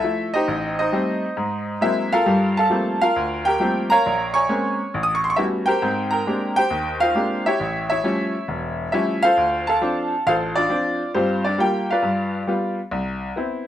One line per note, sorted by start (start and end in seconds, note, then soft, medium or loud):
0.00 0.35 F3 medium
0.00 0.32 A4 medium
0.00 0.31 E5 medium
0.04 0.35 A3 soft
0.04 0.35 E4 medium
0.34 0.76 D#4 medium
0.34 0.76 G4 medium
0.34 0.76 C5 medium
0.34 0.77 D#5 medium
0.48 0.87 A1 medium
0.79 1.79 D#4 medium
0.79 1.79 C5 medium
0.79 1.85 D#5 medium
0.92 1.24 G3 medium
0.92 1.24 A3 soft
0.92 1.24 C4 medium
1.37 1.76 G#2 medium
1.81 2.13 F#3 medium
1.81 2.13 G#3 medium
1.81 2.13 A#3 medium
1.81 2.13 C4 medium
1.81 2.10 E4 medium
1.81 2.13 E5 medium
2.12 2.54 F4 medium
2.12 2.54 A4 medium
2.12 2.54 A#4 medium
2.12 2.57 F5 loud
2.26 2.65 G2 medium
2.26 2.65 G3 medium
2.57 2.99 A4 medium
2.57 2.99 F5 medium
2.57 3.02 A5 medium
2.70 3.02 F3 medium
2.70 3.02 G3 medium
2.70 3.02 A3 medium
2.70 3.02 A#3 soft
2.70 3.02 C4 medium
3.01 3.43 F4 medium
3.01 3.43 A#4 medium
3.01 3.47 F5 loud
3.16 3.54 D2 medium
3.45 3.87 G4 medium
3.45 3.88 A#4 medium
3.45 3.86 G5 loud
3.60 3.91 F3 medium
3.60 3.91 G3 medium
3.60 3.91 A3 medium
3.60 3.91 A#3 medium
3.60 3.92 C4 medium
3.90 4.32 A#4 medium
3.90 4.32 C#5 medium
3.90 4.32 F5 medium
3.90 4.35 A#5 loud
4.06 4.44 A#1 medium
4.34 5.00 C#5 medium
4.34 5.00 G#5 medium
4.34 5.00 C#6 medium
4.49 4.80 G#3 medium
4.49 4.80 A#3 medium
4.49 4.80 C4 medium
4.49 4.80 C#4 medium
4.94 5.32 A1 medium
5.03 5.16 D#6 medium
5.15 5.25 C#6 medium
5.24 5.31 C6 medium
5.30 5.37 C#6 medium
5.36 5.69 G3 medium
5.36 5.69 A3 soft
5.36 5.69 B3 soft
5.36 5.69 C#4 soft
5.36 5.45 E4 medium
5.36 5.69 F#4 medium
5.36 5.43 E5 medium
5.66 6.09 G4 medium
5.66 6.09 A#4 medium
5.66 6.09 C5 medium
5.66 6.11 G5 loud
5.82 6.21 G#2 medium
5.82 6.21 C4 medium
6.11 6.53 A#4 medium
6.11 6.53 G5 medium
6.11 6.57 A#5 medium
6.26 6.58 G#3 medium
6.26 6.58 A#3 soft
6.26 6.58 C4 soft
6.26 6.58 D4 soft
6.26 6.56 G4 medium
6.56 6.98 G4 medium
6.56 6.98 C5 medium
6.56 7.02 G5 loud
6.70 7.09 D#2 medium
7.00 7.43 F4 medium
7.00 7.43 C5 medium
7.00 7.42 F5 loud
7.15 7.46 G#3 soft
7.15 7.46 A#3 soft
7.15 7.46 C4 soft
7.15 7.46 D4 soft
7.15 7.47 G4 medium
7.46 7.87 E4 medium
7.46 7.88 G4 medium
7.46 7.88 C#5 medium
7.46 7.87 E5 medium
7.60 7.98 A1 medium
7.90 8.90 E4 medium
7.90 8.89 C#5 medium
7.90 8.91 E5 medium
8.03 8.35 F3 medium
8.03 8.35 G3 medium
8.03 8.35 A3 soft
8.03 8.35 C#4 medium
8.48 8.87 E1 medium
8.92 9.24 F3 medium
8.92 9.24 G3 medium
8.92 9.24 A3 medium
8.92 9.24 C#4 medium
8.92 9.21 E4 medium
8.92 9.23 E5 medium
9.23 9.65 F4 medium
9.23 9.65 A4 medium
9.23 9.65 C5 medium
9.23 9.68 F5 loud
9.37 9.75 D2 medium
9.67 10.23 A4 medium
9.67 10.23 F5 medium
9.67 10.22 A5 medium
9.81 10.12 F3 medium
9.81 10.13 C4 medium
9.81 10.13 D4 medium
10.27 10.65 A1 medium
10.27 10.55 F4 medium
10.27 10.55 A4 medium
10.27 10.55 C5 medium
10.27 10.33 F5 loud
10.56 10.69 D4 medium
10.56 11.11 F4 medium
10.56 11.10 D5 medium
10.69 11.01 F3 medium
10.69 11.01 C4 medium
10.69 11.01 D4 medium
11.14 11.53 G2 medium
11.14 11.53 G3 medium
11.14 11.43 C4 medium
11.14 11.43 F4 medium
11.14 11.45 C5 medium
11.44 11.59 D4 medium
11.44 11.58 D5 medium
11.58 11.90 G3 medium
11.58 11.90 A#3 medium
11.58 11.90 F4 medium
11.58 11.90 G5 medium
11.63 11.88 G4 medium
11.91 12.47 F4 medium
11.91 12.75 B4 medium
11.91 12.75 D5 medium
11.91 12.74 F5 medium
12.03 12.41 G2 medium
12.47 12.78 G3 medium
12.47 12.79 B3 soft
12.47 12.79 F4 medium
12.91 13.30 C2 medium
13.36 13.67 B3 soft
13.36 13.67 C4 soft
13.36 13.67 E4 medium